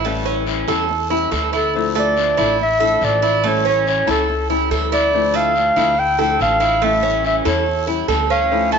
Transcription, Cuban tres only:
0.05 A3
0.25 C#4
0.68 A4
1.10 E4
1.32 A4
1.53 E4
1.95 A3
2.37 E4
2.80 A4
3.22 E4
3.44 A3
3.65 C#4
4.07 A4
4.50 E4
4.71 A4
4.92 E4
5.34 A3
5.76 E4
6.19 A4
6.60 E4
6.82 A3
7.03 C#4
7.45 A4
7.87 E4
8.08 A4
8.30 C#4
8.72 A3

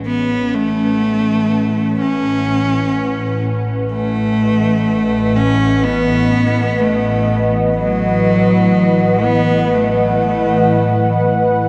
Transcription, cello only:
0.07 B3
0.55 A3
2.01 C#4
3.93 A3
5.36 C#4
5.84 B3
6.80 A3
7.76 F#3
9.24 B3
9.74 A3

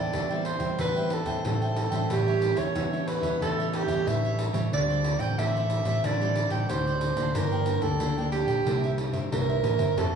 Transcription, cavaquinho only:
Already playing: C5 E5 G5
0.13 A4 C5 E5 G5
0.29 C5 E5 G5
0.59 C5 E5 G5
0.78 A4 C5 E5 G5
0.95 C5 E5 G5
1.11 muted cavaquinho stroke
1.26 C5 E5 G5
1.62 C5 E5 G5
1.90 C5 E5 G5
2.09 G4 A4 C#5 E5
2.26 A4 C#5 E5
2.41 muted cavaquinho stroke
2.56 A4 C#5 E5
2.74 G4 A4 C#5 E5
2.92 A4 C#5 E5
3.21 A4 C#5 E5
3.40 G4 A4 C#5 E5
3.58 A4 C#5 E5
3.72 muted cavaquinho stroke
3.86 A4 C#5 E5
4.23 A4 C#5 E5
4.53 A4 C#5 E5
4.72 F4 A4 C5 D5
4.88 A4 C5 D5
5.04 muted cavaquinho stroke
5.18 A4 C5 D5
5.38 F4 A4 C5 D5
5.54 A4 C5 D5
5.84 A4 C5 D5
6.04 F4 A4 C5 D5
6.20 A4 C5 D5
6.35 muted cavaquinho stroke
6.49 A4 C5 D5
6.86 A4 C5 D5
7.15 A4 C5 D5
7.35 F4 A#4 D5 G5
7.52 A#4 D5 G5
7.66 muted cavaquinho stroke
7.81 A#4 D5 G5
8.01 F4 A#4 D5 G5
8.17 A#4 D5 G5
8.46 A#4 D5 G5
8.65 E4 A#4 C5 E5
8.83 A#4 C5 E5
8.97 muted cavaquinho stroke
9.12 A#4 C5 E5
9.48 A#4 C5 E5
9.78 A#4 C5 E5
9.97 E4 A4 C5 F5

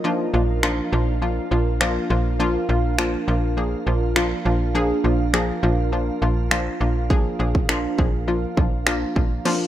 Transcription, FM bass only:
0.34 A#1
0.93 A#1
1.51 A#1
2.10 A#1
2.69 A#1
3.28 A#1
3.87 A#1
4.46 A#1
5.04 A#1
5.63 A#1
6.22 A#1
6.81 A#1
7.40 A#1
7.99 A#1
8.57 A#1
9.16 A#1

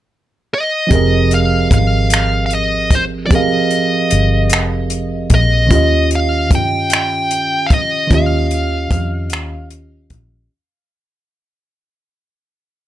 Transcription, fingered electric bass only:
0.92 F1
1.72 G#1
3.31 F1
4.12 G1
4.53 F1
5.31 A#1
5.71 D#2
6.51 G2
8.12 D#2
8.91 F2
9.32 D#2
10.11 A#1

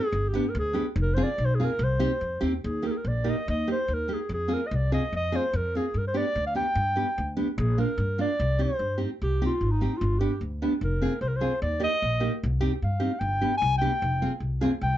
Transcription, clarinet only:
Already playing: G#4
0.28 G4
0.49 A#4
0.59 G#4
1.02 A#4
1.14 C5
1.23 D5
1.45 C5
1.55 G#4
1.64 A#4
1.84 C5
2.64 G#4
2.86 A#4
2.91 G#4
2.97 A#4
3.08 D5
3.29 D#5
3.50 D#5
3.72 C5
3.94 A#4
4.13 G#4
4.34 G#4
4.53 A#4
4.67 D#5
4.75 D5
4.94 D#5
5.16 D#5
5.36 C5
5.56 A#4
5.77 G#4
5.98 A#4
6.07 C5
6.17 D5
6.46 F5
6.56 G5
7.58 G#4
7.80 A#4
8.21 D5
8.62 C5
9.23 G4
9.46 F4
9.71 D#4
9.98 F4
10.19 G4
10.84 A#4
11.21 C5
11.28 A#4
11.36 C5
11.62 D5
11.83 D#5
12.84 F5
13.19 G5
13.57 G#5
13.78 G5
14.83 G5

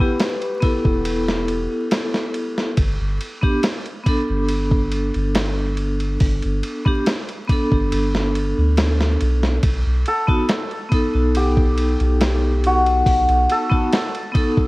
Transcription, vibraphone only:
0.00 B3 E4 G4
0.60 B3 E4
0.65 A4
3.41 B3 D4 G4
4.04 B3 D4
4.09 A4
6.85 B3 D4 G4
7.47 B3 D4
7.52 A4
10.27 B3 D#4 F#4
10.89 B3 D#4
10.94 A4
13.69 B3 D#4 F#4
14.32 B3 D#4
14.37 A4

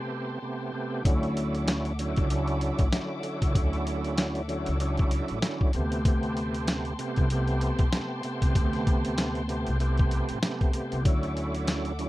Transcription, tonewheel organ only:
Already playing: C3 A3 B3 G4
0.42 C3 A3 B3 G4
0.72 C3 A3 B3 G4
1.04 D3 F#3 C#4 E4
1.99 D3 F#3 C#4 E4
2.30 F#3 C#4 D4 E4
2.93 D3 F#3 C#4 E4
3.23 D3 F#3 C#4 E4
3.53 D3 F#3 C#4 E4
4.48 D3 F#3 C#4 E4
4.80 F#3 C#4 D4 E4
5.41 D3 F#3 C#4 E4
5.74 C3 A3 B3 G4
6.05 C3 A3 B3 G4
6.98 C3 A3 B3 G4
7.30 C3 A3 B3 G4
7.92 C3 A3 B3 G4
8.24 C3 A3 B3 G4
8.54 C3 A3 B3 G4
9.48 C3 A3 B3 G4
9.80 C3 A3 B3 G4
10.42 C3 A3 B3 G4
10.73 C3 A3 B3 G4
11.04 D3 F#3 C#4 E4
11.99 D3 F#3 C#4 E4

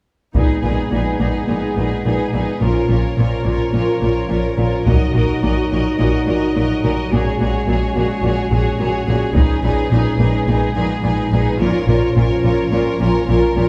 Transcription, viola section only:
0.35 D#4
0.64 D#4
0.92 D#4
1.20 D#4
1.49 D#4
1.77 D#4
2.05 D#4
2.34 D#4
2.62 F4
2.91 F4
3.18 F4
3.46 F4
3.73 F4
4.02 F4
4.30 F4
4.58 F4
4.87 F#4
5.15 F#4
5.43 F#4
5.72 F#4
5.99 F#4
6.27 F#4
6.56 F#4
6.84 F#4
7.12 F#4
7.39 F#4
7.68 F#4
7.95 F#4
8.23 F#4
8.51 F#4
8.79 F#4
9.08 F#4
9.36 D#4
9.64 D#4
9.91 D#4
10.20 D#4
10.48 D#4
10.76 D#4
11.03 D#4
11.32 D#4
11.59 F4
11.87 F4
12.15 F4
12.44 F4
12.71 F4
13.00 F4
13.29 F4
13.57 F4

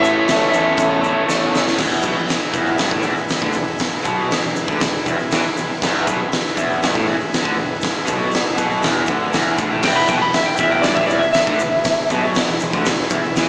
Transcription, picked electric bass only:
Already playing: A1
0.29 C#2
0.55 E2
0.78 E2
1.28 E2
1.79 E1
2.03 B1
2.16 E1
2.29 muted picked electric bass stroke
2.54 E1
2.78 G1
2.91 A1
3.04 E1
3.16 muted picked electric bass stroke
3.42 D2
3.55 E1
4.05 B1
4.31 muted picked electric bass stroke
4.44 E1
4.57 E1
4.68 D2
4.83 E1
5.06 E1
5.19 E1
5.33 E2
5.46 muted picked electric bass stroke
5.59 E1
5.70 muted picked electric bass stroke
5.82 E1
6.07 B1
6.20 E1
6.34 muted picked electric bass stroke
6.57 E1
6.83 G1
6.96 A1
7.09 E1
7.21 muted picked electric bass stroke
7.45 D2
7.60 E1
8.09 B1
8.34 muted picked electric bass stroke
8.47 E1
8.58 B1
8.85 E1
9.08 D2
9.35 E1
9.58 D2
9.73 A1
9.84 E1
10.09 B1
10.21 E1
10.35 muted picked electric bass stroke
10.59 E1
10.85 G1
10.97 A1
11.10 E1
11.23 muted picked electric bass stroke
11.47 D2
11.61 E1
12.10 B1
12.35 muted picked electric bass stroke
12.48 E1
12.62 E1
12.74 D2
12.86 E1
13.11 E1
13.23 E1
13.36 E2

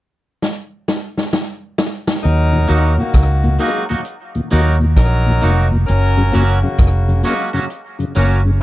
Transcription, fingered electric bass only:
2.25 D#2
2.70 D#2
3.15 C#2
4.53 D#2
4.97 A#1
5.44 F1
5.89 F#1
6.35 F#1
6.80 F1
8.17 F#1

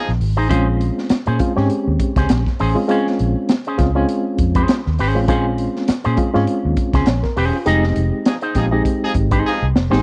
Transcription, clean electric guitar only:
0.37 D#4 G#4 C5
0.49 C#4 G#4 C5
1.27 C#4 G#4 C5
1.57 C#4 G#4 C#5
2.17 C#4 G#4 C5
2.60 C#4 G#4 C5
2.89 C#4 G#4 C#5
3.67 C#4 G#4 C5
3.95 C#4 G#4 C#5
4.55 C#4 G#4 C5
4.99 C#4 G#4 C5
5.28 C#4 G#4 C5
6.04 C#4 G#4 C5
6.35 C#4 G#4 C#5
6.94 C#4 G#4 C5
7.37 C#4 G#4 C5
7.67 D#4 G#4 D#5
8.42 D#4 G#4 C5
8.71 D#4 G#4 D#5
9.31 D#4 G#4 C5
9.91 D#4 G#4 C5

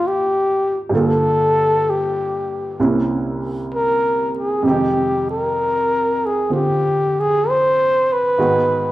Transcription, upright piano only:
Already playing: D#2 D#3 A#3 C4 D#4 F4 G5
0.89 G2 D3 A#3
0.94 F4 A4
2.80 C2 C3 A#3 C#4 E4
4.63 F2 C3 G#3
4.67 D#3 G5
6.50 D3 C4 F4
8.38 G#2 D#3 G#3 B3 F#4

